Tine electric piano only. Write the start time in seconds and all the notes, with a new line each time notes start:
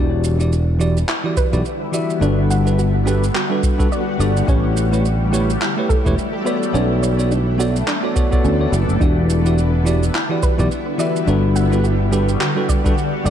Already playing: E3 E4 F#4 G4 D5
0.39 E3 E4 F#4 G4 D5
0.79 E3 E4 F#4 G4 D5
1.24 E3 E4 F#4 G4 D5
1.52 E3 E4 F#4 G4 D5
1.92 E3 E4 F#4 G4 E5
2.20 G3 D4 F#4 A4 B4
2.65 G3 D4 F#4 A4 B4
3.05 G3 D4 F#4 A4 B4
3.50 G3 D4 F#4 A4 B4
3.78 G3 D4 F#4 A4 B4
4.18 G3 D4 F#4 A4 D5
4.47 A3 E4 G4 B4 C#5
4.91 A3 E4 G4 B4 C#5
5.32 A3 E4 G4 B4 C#5
5.77 A3 E4 G4 B4 C#5
6.05 A3 E4 G4 B4 C#5
6.45 B3 F#4 A4 C#5 D5
6.73 B3 F#4 A4 C#5 D5
7.17 B3 F#4 A4 C#5 D5
7.58 B3 F#4 A4 C#5 D5
8.02 B3 F#4 A4 C#5 D5
8.15 B3 F#4 A4 C#5 D5
8.31 B3 F#4 A4 C#5 D5
8.59 B3 F#4 A4 C#5 D5
9.00 E3 E4 F#4 G4 D5
9.45 E3 E4 F#4 G4 D5
9.84 E3 E4 F#4 G4 D5
10.29 E3 E4 F#4 G4 D5
10.58 E3 E4 F#4 G4 D5
10.98 E3 E4 F#4 G4 E5
11.26 G3 D4 F#4 A4 B4
11.70 G3 D4 F#4 A4 B4
12.11 G3 D4 F#4 A4 B4
12.56 G3 D4 F#4 A4 B4
12.84 G3 D4 F#4 A4 B4
13.24 G3 D4 F#4 A4 D5